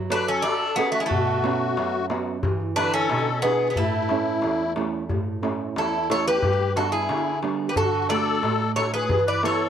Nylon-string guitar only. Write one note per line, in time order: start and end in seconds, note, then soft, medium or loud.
0.00 0.42 F#3 medium
0.10 0.64 F#4 soft
0.10 0.64 A4 medium
0.10 0.63 C#5 soft
0.77 1.04 C#4 soft
0.77 1.04 F#4 soft
0.77 1.04 A4 medium
1.10 1.75 B2 medium
1.44 1.97 B3 medium
1.44 1.97 C#4 soft
1.44 1.97 F#4 medium
1.77 2.42 F#2 medium
2.10 2.37 B3 soft
2.10 2.37 C#4 soft
2.10 2.37 F#4 medium
2.44 3.08 E3 medium
2.77 3.30 D3 medium
2.77 3.30 E4 soft
2.77 3.31 B4 medium
3.11 3.75 B2 medium
3.44 3.70 D4 medium
3.44 3.71 E4 soft
3.44 3.71 G#4 medium
3.78 4.42 A2 medium
4.10 4.63 A3 medium
4.10 4.64 C#4 soft
4.10 4.64 E4 medium
4.44 5.08 E2 medium
4.76 5.03 A3 soft
4.76 5.03 C#4 soft
4.76 5.03 E4 soft
5.10 5.74 A2 medium
5.42 5.96 A3 medium
5.42 5.96 C#4 soft
5.42 5.96 E4 medium
5.76 6.41 E2 medium
6.09 6.36 A3 soft
6.09 6.36 C#4 soft
6.09 6.36 E4 medium
6.43 7.08 G2 medium
6.76 7.30 B3 soft
6.76 7.30 D4 medium
7.10 7.74 D3 medium
7.42 7.69 G3 soft
7.42 7.69 B3 soft
7.42 7.70 D4 soft
7.76 8.41 D3 medium
8.10 8.63 A3 soft
8.10 8.64 D4 soft
8.10 8.64 F#4 medium
8.43 9.08 A2 medium
8.76 9.03 A3 soft
8.76 9.03 D4 soft
8.76 9.04 F#4 soft
9.10 9.69 E3 medium
9.43 9.69 B3 soft
9.43 9.69 E4 soft
9.43 9.69 B4 medium